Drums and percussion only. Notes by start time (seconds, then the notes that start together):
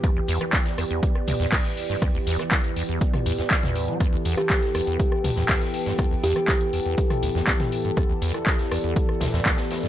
0.04 kick, cross-stick, closed hi-hat, shaker
0.28 open hi-hat, shaker
0.41 cross-stick, closed hi-hat
0.53 kick, snare, clap, closed hi-hat, shaker
0.65 snare, closed hi-hat
0.77 cross-stick, open hi-hat, shaker
0.91 closed hi-hat
1.03 kick, closed hi-hat, shaker
1.15 cross-stick
1.27 open hi-hat, mid tom, shaker
1.40 snare
1.52 kick, cross-stick, snare, clap, closed hi-hat, open hi-hat
1.65 snare, closed hi-hat
1.77 open hi-hat, shaker
1.90 snare, closed hi-hat
2.02 kick, cross-stick, closed hi-hat, shaker
2.27 snare, open hi-hat, shaker
2.39 cross-stick, closed hi-hat
2.51 kick, snare, clap, closed hi-hat, shaker
2.64 closed hi-hat
2.76 open hi-hat, shaker
2.89 closed hi-hat
3.01 kick, closed hi-hat, shaker
3.14 cross-stick, closed hi-hat, mid tom
3.26 open hi-hat, shaker
3.38 snare, closed hi-hat
3.51 kick, cross-stick, snare, clap, closed hi-hat, shaker
3.63 snare, closed hi-hat, mid tom
3.76 open hi-hat, shaker
3.88 closed hi-hat
4.00 kick, cross-stick, closed hi-hat, shaker
4.25 open hi-hat, shaker
4.38 cross-stick, closed hi-hat
4.50 kick, snare, clap, closed hi-hat, shaker
4.62 snare, closed hi-hat
4.74 cross-stick, open hi-hat, shaker
4.87 closed hi-hat
5.00 kick, closed hi-hat, shaker
5.12 cross-stick
5.24 open hi-hat, mid tom, shaker
5.36 snare
5.49 kick, cross-stick, snare, clap, closed hi-hat, open hi-hat
5.62 snare, closed hi-hat
5.74 open hi-hat, shaker
5.86 snare, closed hi-hat
5.98 kick, cross-stick, closed hi-hat, shaker
6.23 snare, open hi-hat, shaker
6.36 cross-stick, closed hi-hat
6.48 kick, snare, clap, closed hi-hat, shaker
6.61 closed hi-hat
6.73 open hi-hat, shaker
6.86 closed hi-hat
6.97 kick, closed hi-hat, shaker
7.10 cross-stick, closed hi-hat, mid tom
7.23 open hi-hat, shaker
7.36 snare
7.47 kick, cross-stick, snare, clap, closed hi-hat, shaker
7.60 snare, closed hi-hat, mid tom
7.72 open hi-hat, shaker
7.85 closed hi-hat
7.97 kick, cross-stick, closed hi-hat, shaker
8.22 open hi-hat, shaker
8.34 cross-stick, closed hi-hat
8.46 kick, snare, clap, closed hi-hat, shaker
8.59 snare, closed hi-hat
8.71 cross-stick, open hi-hat, shaker
8.84 closed hi-hat
8.96 kick, closed hi-hat, shaker
9.09 cross-stick
9.20 snare, open hi-hat, mid tom, shaker
9.33 snare, shaker
9.46 kick, cross-stick, snare, clap, closed hi-hat, shaker
9.57 snare, closed hi-hat, shaker
9.71 snare, open hi-hat, shaker
9.83 snare, closed hi-hat